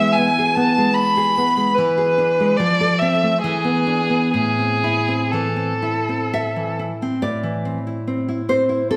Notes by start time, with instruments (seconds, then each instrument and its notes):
Already playing: nylon-string guitar E3 G#3, violin E5
0.13 violin G#5
0.18 nylon-string guitar B3
0.39 nylon-string guitar G#4
0.55 nylon-string guitar B3, violin A5
0.78 nylon-string guitar G#3
0.94 violin B5
1.17 nylon-string guitar G#4
1.37 nylon-string guitar B3
1.57 nylon-string guitar G#3
1.75 nylon-string guitar E3, violin B4
1.98 nylon-string guitar G#4
2.18 nylon-string guitar D4
2.40 nylon-string guitar G#3
2.57 nylon-string guitar F3, violin D5
2.81 nylon-string guitar A4
2.99 nylon-string guitar C4, violin E5
3.23 nylon-string guitar A3
3.42 nylon-string guitar E3, violin G#4
3.64 nylon-string guitar B3
3.87 nylon-string guitar D4
4.10 nylon-string guitar B3
4.34 nylon-string guitar A2, violin G#4
4.59 nylon-string guitar C4
4.84 nylon-string guitar E4
5.08 nylon-string guitar C4
5.31 nylon-string guitar E3, violin A4
5.56 nylon-string guitar C4
5.82 nylon-string guitar E4
6.09 nylon-string guitar C4
6.34 nylon-string guitar E5
6.56 nylon-string guitar E3
6.79 nylon-string guitar E4
7.02 nylon-string guitar C4
7.22 nylon-string guitar A2 D5
7.43 nylon-string guitar E3
7.65 nylon-string guitar C4
7.87 nylon-string guitar E4
8.07 nylon-string guitar C4
8.28 nylon-string guitar E4
8.49 nylon-string guitar C4 C5
8.69 nylon-string guitar E4
8.90 nylon-string guitar C4 A4